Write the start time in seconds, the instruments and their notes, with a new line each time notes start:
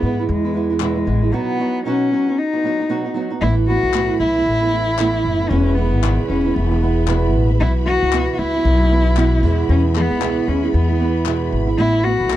Already playing: cello B3
0.03 upright bass G#2, nylon-string guitar E3 G#3 B3 E4
0.19 nylon-string guitar E3 G#3 B3 E4
0.29 upright bass E2, cello G#3
0.45 nylon-string guitar E3 G#3 B3 E4
0.54 nylon-string guitar E3 G#3 B3 E4
0.70 nylon-string guitar E3 G#3 B3 E4
0.80 nylon-string guitar E2 B2 E3 G#3 B3 E4, cello G#3, clap
0.95 nylon-string guitar E3 G#3 B3 E4
1.06 upright bass A1, nylon-string guitar E3 G#3 B3 E4
1.22 nylon-string guitar E3 G#3 B3 E4
1.32 nylon-string guitar B2 F#3 B3 D#4 F#4, cello B3
1.58 nylon-string guitar F#3 B3 D#4 F#4
1.85 nylon-string guitar B2 F#3 B3 D#4 F#4, cello C#4
2.11 nylon-string guitar F#3 B3 D#4 F#4
2.27 nylon-string guitar B3 D#4 F#4
2.38 cello D#4
2.53 nylon-string guitar B3 D#4 F#4
2.64 nylon-string guitar F#3 B3 D#4 F#4
2.80 nylon-string guitar B3 D#4 F#4
2.89 nylon-string guitar B2 F#3 B3 D#4 F#4
3.04 nylon-string guitar B3 D#4 F#4
3.14 nylon-string guitar F#3 B3 D#4 F#4
3.30 nylon-string guitar B3 D#4 F#4
3.41 upright bass A1, nylon-string guitar A2 E3 A3 B3 E4, cello E4, string section A4 B4 E5 B5
3.67 nylon-string guitar E3 A3 B3 E4, cello F#4
3.83 upright bass B1
3.93 nylon-string guitar A2 E3 A3 B3 E4, clap
4.19 upright bass B1, nylon-string guitar E3 A3 B3 E4, cello E4
4.35 nylon-string guitar A3 B3 E4
4.46 upright bass A1
4.61 nylon-string guitar A3 B3 E4
4.71 nylon-string guitar E3 A3 B3 E4
4.98 nylon-string guitar A2 E3 A3 B3 E4, clap
5.25 upright bass F#1
5.39 nylon-string guitar A3 B3 E4
5.49 upright bass E1, nylon-string guitar E2 B2 E3 G#3 B3 E4, cello C#4, string section G#4 B5
5.75 nylon-string guitar E3 G#3 B3 E4, cello B3
5.93 upright bass G#1
6.02 nylon-string guitar E2 B2 E3 G#3 B3 E4, clap
6.28 upright bass E1, nylon-string guitar E3 G#3 B3, cello C#4
6.32 nylon-string guitar E4
6.45 nylon-string guitar E3 G#3 B3 E4
6.55 upright bass E1, cello B3
6.71 nylon-string guitar E3 G#3 B3 E4
6.81 nylon-string guitar E3 G#3 B3 E4
7.07 nylon-string guitar E2 B2 E3 G#3 B3 E4, clap
7.34 upright bass A1
7.49 nylon-string guitar E3 G#3 B3 E4
7.60 upright bass B1, nylon-string guitar B2 E3 B3 E4 F#4, cello E4, string section F#4
7.86 nylon-string guitar E3 B3 E4 F#4, cello F#4
8.03 upright bass C#2
8.12 nylon-string guitar B2 E3 B3 E4 F#4, clap
8.33 cello F#4
8.38 upright bass C#2, nylon-string guitar E3 B3 E4 F#4, cello E4
8.54 nylon-string guitar B3 E4 F#4
8.65 upright bass B1
8.80 nylon-string guitar B3 E4 F#4
8.91 nylon-string guitar E3 B3 E4 F#4
9.16 nylon-string guitar B2 E3 B3 E4 F#4, clap
9.43 nylon-string guitar E2 B2 E3 G#3 B3 E4, upright bass E2, string section G#4
9.69 upright bass E2, cello C#4
9.94 nylon-string guitar E3 G#3 B3 E4, cello B3, clap
10.11 upright bass C#2
10.20 nylon-string guitar E2 B2 E3 G#3 B3 E4, clap
10.46 upright bass D#2, nylon-string guitar E3 G#3 B3 E4, cello C#4
10.63 nylon-string guitar E3 G#3 B3 E4
10.74 upright bass E2, cello B3
10.89 nylon-string guitar E3 G#3 B3 E4
10.98 nylon-string guitar E3 G#3 B3 E4
11.25 nylon-string guitar E2 B2 E3 G#3 B3 E4, clap
11.52 upright bass G#1
11.67 nylon-string guitar E3 G#3 B3 E4
11.78 upright bass A1, nylon-string guitar A2 E3 A3 B3 E4, cello E4, string section A4 B4
12.03 nylon-string guitar E3 A3 B3 E4, cello F#4
12.20 upright bass B1
12.30 nylon-string guitar A2 E3 A3 B3 E4, clap